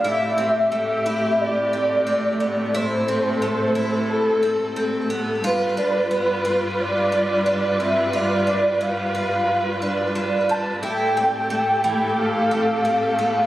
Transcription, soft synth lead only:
X:1
M:4/4
L:1/8
Q:1/4=89
K:Am
V:1 name="Soft synth lead"
e4 d4 | c4 A3 z | B4 d3 e | d2 f3 z2 a |
g4 f4 |]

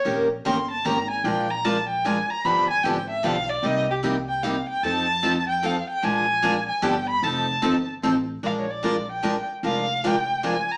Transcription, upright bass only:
X:1
M:3/4
L:1/8
Q:"Swing" 1/4=150
K:Bbmix
V:1 name="Upright bass" clef=bass
B,,,2 G,,,2 A,,,2 | B,,,6 | G,,,2 A,,,2 =B,,,2 | C,,6 |
F,,6 | B,,,4 G,,,2 | F,,,2 G,,,2 =A,,,2 | B,,,6 |
F,,,6 |]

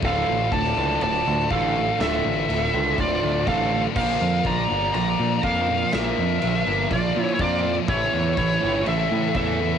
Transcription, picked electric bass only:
X:1
M:4/4
L:1/8
Q:1/4=122
K:Dm
V:1 name="Picked electric bass" clef=bass
D,,, A,,, D,,, ^C,, D,,, D,, A,,,2 | D,,, A,,, D,,, ^C,, D,,, D,, A,,,2 | B,,, F,, B,,, G,,, B,,, B,, F,,2 | B,,, F,, B,,, G,,, B,,, B,, F,,2 |
A,,, E,, A,,, G,,, A,,, A,, E,,2 |]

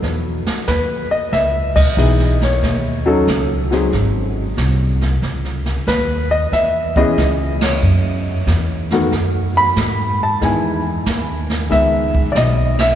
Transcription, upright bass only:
X:1
M:4/4
L:1/8
Q:"Swing" 1/4=92
K:Elyd
V:1 name="Upright bass" clef=bass
E,, z D,, z C,,2 B,,,2 | D,,2 C,,2 G,,,2 ^B,,,2 | C,,2 D,,2 E,,2 C,,2 | F,,2 E,,2 F,,2 G,,2 |
E,,2 D,,2 C,,2 B,,,2 |]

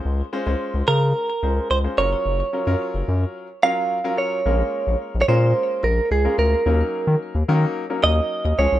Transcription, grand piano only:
X:1
M:4/4
L:1/16
Q:1/4=109
K:Bbm
V:1 name="Grand piano"
[A,DFc] z [A,DFc] [A,DFc]6 z [A,DFc]2 z [A,DFc] [G,DFB]2- | [G,DFB] z [G,DFB] [G,DFB]6 z [G,DFB]2 z [G,DFB]2 z | [A,B,DFB]4- [A,B,DFB] z [A,B,DFB]6 z [A,B,DFB]2 z | [G,B,DEB]4- [G,B,DEB] z [G,B,DEB]2 z [G,B,DEB]4- [G,B,DEB] [F,A,DA]2 |]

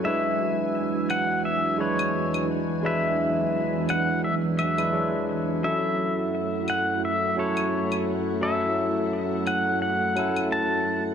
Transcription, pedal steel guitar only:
X:1
M:4/4
L:1/16
Q:"Swing 16ths" 1/4=86
K:F#m
V:1 name="Pedal steel guitar"
e6 f2 e2 c4 z2 | e6 f2 e2 e4 z2 | e6 f2 e2 c4 z2 | e6 f2 f4 a3 z |]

